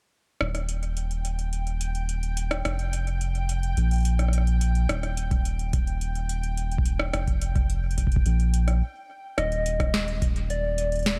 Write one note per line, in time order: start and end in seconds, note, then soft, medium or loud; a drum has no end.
0.41 2.62 D#1 medium
0.41 8.82 G5 medium
0.41 cross-stick medium
0.55 cross-stick soft
0.55 closed hi-hat medium
0.69 closed hi-hat medium
0.83 closed hi-hat soft
0.97 closed hi-hat medium
1.11 closed hi-hat soft
1.25 closed hi-hat medium
1.39 closed hi-hat soft
1.53 closed hi-hat medium
1.67 closed hi-hat soft
1.81 closed hi-hat medium
1.95 closed hi-hat soft
2.09 closed hi-hat medium
2.23 closed hi-hat soft
2.37 closed hi-hat medium
2.51 cross-stick medium
2.51 closed hi-hat soft
2.65 3.74 F1 medium
2.65 cross-stick medium
2.65 closed hi-hat medium
2.79 closed hi-hat soft
2.93 closed hi-hat medium
3.07 closed hi-hat soft
3.21 closed hi-hat medium
3.35 closed hi-hat soft
3.49 closed hi-hat medium
3.63 closed hi-hat soft
3.77 4.86 A#1 medium
3.77 closed hi-hat medium
3.91 closed hi-hat soft
3.93 closed hi-hat soft
3.96 closed hi-hat soft
3.98 closed hi-hat soft
4.00 closed hi-hat soft
4.03 closed hi-hat soft
4.05 closed hi-hat medium
4.19 cross-stick soft
4.19 closed hi-hat soft
4.28 cross-stick soft
4.33 closed hi-hat medium
4.38 cross-stick soft
4.47 closed hi-hat soft
4.61 closed hi-hat medium
4.75 closed hi-hat soft
4.89 7.11 D#1 medium
4.89 cross-stick medium
4.89 closed hi-hat medium
5.03 cross-stick soft
5.03 closed hi-hat soft
5.17 closed hi-hat medium
5.31 kick loud
5.31 closed hi-hat soft
5.45 closed hi-hat medium
5.59 closed hi-hat soft
5.73 kick loud
5.73 closed hi-hat medium
5.87 closed hi-hat soft
6.01 closed hi-hat medium
6.15 closed hi-hat soft
6.29 closed hi-hat medium
6.43 closed hi-hat soft
6.57 closed hi-hat medium
6.72 closed hi-hat soft
6.78 kick loud
6.86 closed hi-hat medium
7.00 cross-stick medium
7.13 8.23 F1 medium
7.13 cross-stick medium
7.13 closed hi-hat medium
7.28 kick medium
7.28 closed hi-hat soft
7.42 closed hi-hat medium
7.56 kick loud
7.56 closed hi-hat soft
7.70 closed hi-hat medium
7.91 closed hi-hat soft
7.98 kick medium
7.98 closed hi-hat medium
8.07 kick medium
8.12 closed hi-hat soft
8.16 kick medium
8.26 8.82 A#1 medium
8.26 closed hi-hat medium
8.40 closed hi-hat soft
8.54 closed hi-hat medium
8.68 cross-stick soft
8.68 closed hi-hat soft
9.38 11.19 D#1 medium
9.38 10.18 D#5 loud
9.38 cross-stick medium
9.38 closed hi-hat medium
9.52 closed hi-hat soft
9.66 closed hi-hat medium
9.80 kick loud
9.80 cross-stick medium
9.80 closed hi-hat soft
9.94 snare loud
9.94 closed hi-hat medium
10.08 closed hi-hat soft
10.22 kick loud
10.22 closed hi-hat medium
10.36 closed hi-hat soft
10.50 11.19 D5 loud
10.50 closed hi-hat medium
10.78 closed hi-hat medium
10.92 closed hi-hat soft
10.96 closed hi-hat soft
10.99 closed hi-hat soft
11.03 snare loud
11.03 closed hi-hat soft
11.06 closed hi-hat medium